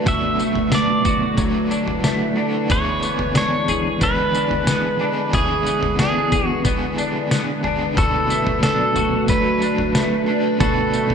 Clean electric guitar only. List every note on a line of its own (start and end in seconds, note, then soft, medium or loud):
0.00 1.37 F#3 medium
0.00 0.38 A3 medium
0.00 0.72 D4 medium
0.06 2.70 B2 medium
0.06 1.04 F#4 medium
0.39 2.03 A3 medium
0.72 1.70 D4 medium
1.05 2.70 F#4 medium
1.38 2.69 F#3 medium
1.71 2.36 D4 medium
2.04 2.76 A3 medium
2.37 3.35 D4 medium
2.70 5.33 E3 medium
2.70 3.68 G#4 medium
3.03 4.01 B3 medium
3.36 4.34 D4 medium
3.69 5.33 G#4 medium
4.01 4.68 B3 medium
4.35 5.00 D4 medium
4.68 5.66 B3 medium
5.01 5.99 D4 medium
5.34 7.97 E3 medium
5.34 6.31 G#4 medium
5.66 6.64 B3 medium
5.99 6.97 D4 medium
6.32 7.97 G#4 medium
6.65 7.31 B3 medium
6.98 7.64 D4 medium
7.31 8.30 B3 medium
7.64 8.63 D4 medium
7.97 10.60 B2 medium
7.97 8.95 F#4 medium
8.30 9.94 A3 medium
8.63 9.62 D4 medium
8.96 10.60 F#4 medium
9.29 11.15 F#3 medium
9.62 10.27 D4 medium
9.95 10.93 A3 medium
10.28 11.15 D4 medium
10.61 11.15 B2 medium
10.61 11.15 F#4 medium
10.94 11.15 A3 medium